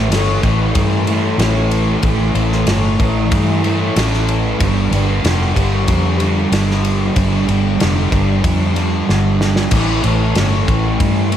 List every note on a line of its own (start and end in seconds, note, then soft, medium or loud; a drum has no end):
0.00 0.12 E3 medium
0.00 0.13 A3 medium
0.10 0.39 G1 medium
0.10 1.37 A2 medium
0.10 0.45 E3 medium
0.10 0.42 A3 medium
0.10 snare loud
0.10 ride loud
0.43 0.72 A1 medium
0.43 1.09 E3 medium
0.43 1.05 A3 medium
0.43 kick medium
0.43 ride medium
0.75 1.33 G2 medium
0.75 kick loud
0.75 ride medium
1.07 1.38 E3 soft
1.07 1.40 A3 medium
1.07 ride medium
1.38 1.96 A1 medium
1.38 2.01 A2 medium
1.38 2.03 E3 medium
1.38 2.05 A3 medium
1.38 snare loud
1.38 ride loud
1.71 ride medium
2.02 2.32 A1 loud
2.02 2.67 A2 medium
2.02 2.37 E3 loud
2.02 2.34 A3 loud
2.02 kick loud
2.02 ride medium
2.35 2.64 A1 medium
2.35 2.68 E3 medium
2.35 2.70 A3 medium
2.35 ride medium
2.52 snare soft
2.66 2.95 G1 medium
2.66 3.32 A2 medium
2.66 3.02 E3 medium
2.66 snare loud
2.66 ride medium
2.71 2.99 A3 medium
3.00 3.28 A1 medium
3.00 3.65 E3 medium
3.00 3.62 A3 medium
3.00 kick medium
3.00 ride medium
3.32 3.89 G2 medium
3.32 kick loud
3.32 ride medium
3.63 3.96 E3 medium
3.63 3.98 A3 medium
3.63 ride medium
3.95 4.53 A1 medium
3.95 4.57 A2 medium
3.95 4.58 E3 medium
3.95 4.59 A3 medium
3.95 snare loud
3.95 ride loud
4.13 snare soft
4.29 ride medium
4.59 4.89 G1 loud
4.59 5.22 G2 medium
4.59 4.94 D3 medium
4.59 4.91 G3 medium
4.59 kick loud
4.59 ride loud
4.91 5.20 G1 medium
4.91 5.23 D3 medium
4.91 5.25 G3 medium
4.91 ride medium
5.22 5.52 F1 medium
5.22 6.49 G2 medium
5.22 5.57 D3 medium
5.22 5.54 G3 medium
5.22 snare loud
5.22 ride medium
5.55 5.85 G1 medium
5.55 6.20 D3 medium
5.55 6.17 G3 medium
5.55 kick medium
5.55 ride medium
5.88 6.45 F2 medium
5.88 kick loud
5.88 ride medium
6.17 6.50 D3 medium
6.17 6.53 G3 medium
6.17 ride medium
6.50 7.09 G1 medium
6.50 7.13 G2 medium
6.50 7.15 D3 medium
6.50 7.17 G3 medium
6.50 snare loud
6.50 ride loud
6.71 snare soft
6.85 ride medium
7.14 7.45 G1 medium
7.14 7.76 G2 medium
7.14 7.49 D3 medium
7.14 7.46 G3 medium
7.14 kick loud
7.14 ride medium
7.46 7.76 G1 medium
7.46 7.78 D3 medium
7.46 7.80 G3 medium
7.46 ride medium
7.78 8.43 G2 medium
7.78 8.12 D3 medium
7.78 8.10 G3 medium
7.78 snare loud
7.78 ride medium
7.82 8.09 F1 medium
8.10 8.40 G1 medium
8.10 8.76 D3 medium
8.10 8.73 G3 medium
8.10 kick medium
8.10 ride medium
8.44 9.01 F2 medium
8.44 kick loud
8.44 ride medium
8.74 9.07 D3 medium
8.74 9.09 G3 medium
8.74 ride medium
9.06 9.66 G1 medium
9.06 9.69 G2 medium
9.06 9.70 D3 medium
9.06 9.72 G3 medium
9.06 snare medium
9.41 snare medium
9.56 snare medium
9.70 10.00 A1 medium
9.70 10.34 A2 medium
9.70 10.06 E3 medium
9.70 10.03 A3 loud
9.70 kick loud
9.70 ride medium
9.70 crash medium
10.03 10.32 A1 medium
10.03 10.36 E3 medium
10.03 10.37 A3 medium
10.03 ride medium
10.34 10.64 G1 medium
10.34 11.37 A2 medium
10.34 10.69 E3 medium
10.34 10.66 A3 medium
10.34 snare loud
10.34 ride medium
10.66 10.96 A1 medium
10.66 11.32 E3 medium
10.66 11.29 A3 medium
10.66 kick medium
10.66 ride medium
11.00 11.37 G2 medium
11.00 kick loud
11.00 ride medium
11.30 11.37 E3 medium
11.30 11.37 A3 medium
11.30 ride medium